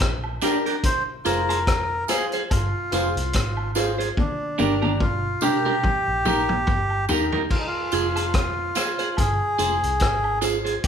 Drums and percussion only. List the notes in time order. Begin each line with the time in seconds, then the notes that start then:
0.01 kick, cross-stick
0.24 high woodblock
0.41 cross-stick, closed hi-hat, tambourine
0.66 closed hi-hat
0.83 kick, closed hi-hat
1.25 closed hi-hat, tambourine
1.49 closed hi-hat, high woodblock
1.67 kick, cross-stick, closed hi-hat
2.08 cross-stick, closed hi-hat, tambourine
2.32 closed hi-hat
2.50 kick, closed hi-hat, high woodblock
2.92 closed hi-hat, tambourine
3.17 closed hi-hat
3.33 kick, cross-stick, closed hi-hat
3.57 high woodblock
3.75 cross-stick, closed hi-hat, tambourine
4.00 closed hi-hat
4.17 kick, high tom
4.59 high tom, tambourine
4.82 high tom, high woodblock
5.00 kick, mid tom
5.41 mid tom, tambourine
5.66 mid tom
5.83 kick, mid tom
6.25 mid tom, tambourine
6.49 mid tom
6.67 kick, floor tom
6.90 high woodblock
7.09 floor tom, tambourine
7.32 floor tom
7.51 kick, crash
7.92 closed hi-hat, tambourine
8.16 closed hi-hat, high woodblock
8.34 kick, cross-stick, closed hi-hat
8.75 cross-stick, closed hi-hat, tambourine
8.99 closed hi-hat
9.17 kick, closed hi-hat, high woodblock
9.59 closed hi-hat, tambourine
9.83 closed hi-hat
10.00 kick, cross-stick, closed hi-hat
10.24 high woodblock
10.42 closed hi-hat, tambourine
10.66 closed hi-hat
10.84 kick, closed hi-hat